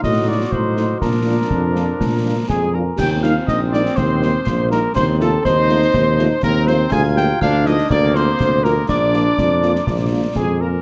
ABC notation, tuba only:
X:1
M:2/4
L:1/8
Q:1/4=122
K:Eb
V:1 name="Tuba" clef=bass
=A,,2 A,,2 | B,,2 F,,2 | B,,2 F,,2 | E,,2 B,,,2 |
E,,2 B,,,2 | E,,2 E,,2 | E,,2 E,,2 | D,,2 D,,2 |
D,,2 D,,2 | B,,,2 F,,2 | B,,,2 F,,2 |]